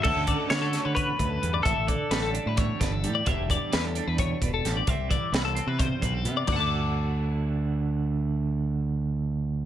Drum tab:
CC |x------|-------|-------|-------|
HH |-xxxxxx|xxxxxxx|xxxxxxx|xxxxxxx|
SD |--oo---|--o--o-|--o---o|--o----|
FT |-------|-------|-------|-------|
BD |oo--oo-|oo--oo-|oo--oo-|oo--oo-|

CC |x------|-------|
HH |-------|-------|
SD |-------|-------|
FT |o------|-------|
BD |o------|-------|